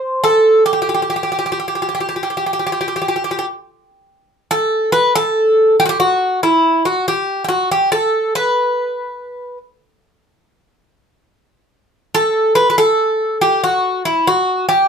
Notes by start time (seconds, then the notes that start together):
Already playing: C5
0.24 A4
0.66 G4
0.73 G4
0.82 G4
0.89 G4
0.94 G4
1.02 G4
1.10 G4
1.16 G4
1.23 G4
1.32 G4
1.39 G4
1.46 G4
1.52 G4
1.60 G4
1.68 G4
1.75 G4
1.82 G4
1.89 G4
1.95 G4
2.00 G4
2.09 G4
2.16 G4
2.23 G4
2.30 G4
2.37 G4
2.46 G4
2.53 G4
2.59 G4
2.67 G4
2.72 G4
2.81 G4
2.88 G4
2.96 G4
3.02 G4
3.08 G4
3.16 G4
3.24 G4
3.31 G4
3.39 G4
4.51 A4
4.92 B4
5.16 A4
5.80 G4
5.86 F#4 G4
6.00 F#4
6.43 E4
6.85 F#4
7.08 G4
7.44 G4
7.49 F#4
7.71 G4
7.92 A4
8.35 B4
12.15 A4
12.55 B4
12.70 B4
12.78 A4
13.41 G4
13.64 F#4
14.05 E4
14.27 F#4
14.69 G4